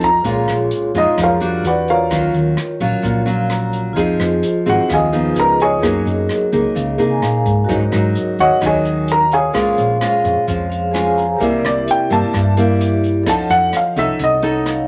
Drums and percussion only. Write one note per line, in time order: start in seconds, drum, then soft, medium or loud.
0.01 kick medium
0.01 closed hi-hat soft
0.25 kick medium
0.25 closed hi-hat soft
0.48 cross-stick medium
0.48 closed hi-hat soft
0.71 closed hi-hat soft
0.95 closed hi-hat soft
1.18 kick medium
1.18 cross-stick medium
1.18 closed hi-hat soft
1.41 closed hi-hat soft
1.65 closed hi-hat soft
1.88 closed hi-hat soft
2.11 kick medium
2.11 cross-stick medium
2.11 closed hi-hat soft
2.34 closed hi-hat soft
2.57 cross-stick medium
2.57 closed hi-hat soft
2.80 closed hi-hat soft
3.04 kick medium
3.04 closed hi-hat soft
3.27 closed hi-hat soft
3.50 cross-stick medium
3.50 closed hi-hat soft
3.73 closed hi-hat soft
3.97 kick medium
3.97 closed hi-hat soft
4.20 cross-stick medium
4.20 closed hi-hat soft
4.43 closed hi-hat soft
4.67 closed hi-hat soft
4.90 kick medium
4.90 cross-stick medium
4.90 closed hi-hat soft
5.13 closed hi-hat soft
5.36 closed hi-hat soft
5.60 closed hi-hat soft
5.83 kick medium
5.83 cross-stick medium
5.83 closed hi-hat soft
6.07 closed hi-hat soft
6.29 cross-stick medium
6.29 closed hi-hat soft
6.53 kick medium
6.53 closed hi-hat soft
6.76 kick medium
6.76 closed hi-hat soft
6.99 closed hi-hat soft
7.22 cross-stick medium
7.22 closed hi-hat soft
7.46 kick medium
7.46 closed hi-hat soft
7.69 kick medium
7.69 closed hi-hat soft
7.92 cross-stick medium
7.92 closed hi-hat soft
8.15 closed hi-hat soft
8.39 closed hi-hat soft
8.62 kick medium
8.62 cross-stick medium
8.62 closed hi-hat soft
8.85 closed hi-hat soft
9.08 closed hi-hat soft
9.32 closed hi-hat soft
9.55 kick medium
9.55 cross-stick medium
9.55 closed hi-hat soft
9.78 closed hi-hat soft
10.01 cross-stick medium
10.01 closed hi-hat soft
10.25 closed hi-hat soft
10.48 kick medium
10.48 closed hi-hat soft
10.72 closed hi-hat soft
10.95 cross-stick medium
10.95 closed hi-hat soft
11.18 closed hi-hat soft
11.41 kick medium
11.41 closed hi-hat soft
11.65 cross-stick medium
11.65 closed hi-hat soft
11.88 closed hi-hat soft
12.11 closed hi-hat soft
12.34 kick medium
12.34 cross-stick medium
12.34 closed hi-hat soft
12.57 closed hi-hat soft
12.81 closed hi-hat soft
13.04 closed hi-hat soft
13.26 kick medium
13.26 cross-stick medium
13.26 closed hi-hat soft
13.50 closed hi-hat soft
13.73 cross-stick medium
13.73 closed hi-hat soft
13.96 kick medium
13.96 closed hi-hat soft
14.19 kick medium
14.19 closed hi-hat soft
14.43 closed hi-hat soft
14.66 cross-stick medium
14.66 closed hi-hat soft